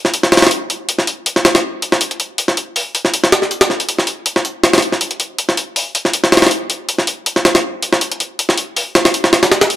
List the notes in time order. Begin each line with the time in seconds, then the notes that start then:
0.05 snare
0.14 open hi-hat
0.23 snare
0.32 snare, open hi-hat
0.37 snare, open hi-hat
0.42 snare, open hi-hat
0.47 snare, open hi-hat
0.51 open hi-hat
0.70 open hi-hat
0.89 open hi-hat
0.99 snare
1.07 open hi-hat
1.26 open hi-hat
1.36 snare
1.45 snare, open hi-hat
1.55 snare, open hi-hat
1.82 open hi-hat
1.92 snare
2.01 open hi-hat
2.11 closed hi-hat
2.20 open hi-hat
2.38 open hi-hat
2.48 snare
2.57 open hi-hat
2.76 open hi-hat
2.95 open hi-hat
3.05 snare
3.14 open hi-hat
3.24 snare
3.32 snare, open hi-hat
3.42 snare
3.51 open hi-hat
3.61 snare, open hi-hat
3.70 snare
3.80 open hi-hat
3.89 open hi-hat
3.99 snare
4.07 open hi-hat
4.26 open hi-hat
4.36 snare
4.45 open hi-hat
4.64 snare, open hi-hat
4.73 snare, open hi-hat
4.78 snare, open hi-hat
4.82 open hi-hat
4.92 snare
5.01 open hi-hat
5.11 closed hi-hat
5.20 open hi-hat
5.38 open hi-hat
5.49 snare
5.57 open hi-hat
5.76 open hi-hat
5.95 open hi-hat
6.05 snare
6.13 open hi-hat
6.24 snare
6.32 snare, open hi-hat
6.37 snare, open hi-hat
6.42 snare, open hi-hat
6.47 snare, open hi-hat
6.51 open hi-hat
6.70 open hi-hat
6.89 open hi-hat
6.98 snare
7.07 open hi-hat
7.26 open hi-hat
7.36 snare
7.45 snare, open hi-hat
7.55 snare, open hi-hat
7.82 open hi-hat
7.93 snare
8.01 open hi-hat
8.12 closed hi-hat
8.20 open hi-hat
8.39 open hi-hat
8.49 snare
8.58 open hi-hat
8.77 open hi-hat
8.95 snare, open hi-hat
9.05 snare, open hi-hat
9.14 open hi-hat
9.24 snare
9.33 snare, open hi-hat
9.43 snare, open hi-hat
9.52 snare, open hi-hat
9.61 snare, open hi-hat
9.70 open hi-hat